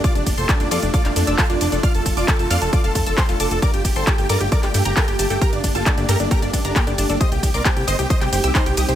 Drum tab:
RD |--x---x---x---x-|--x---x---x---x-|--x---x---x---x-|--x---x---x---x-|
HH |xxoxxxoxxxoxxxox|xxoxxxoxxxoxxxox|xxoxxxoxxxoxxxox|xxoxxxoxxxoxxxox|
SH |xxxxxxxxxxxxxxxx|xxxxxxxxxxxxxxxx|xxxxxxxxxxxxxxxx|xxxxxxxxxxxxxxxx|
CP |----x----x--x---|----x-------x---|----x----x--x---|----x-------x---|
BD |o-o-o---o---o---|o-o-o---o-o-o---|o-o-o---o---o---|o-o-o---o-o-o---|

RD |--x---x---x---x-|
HH |xxoxxxoxxxoxxxox|
SH |xxxxxxxxxxxxxxxx|
CP |----x----x--x---|
BD |o-o-o---o---o---|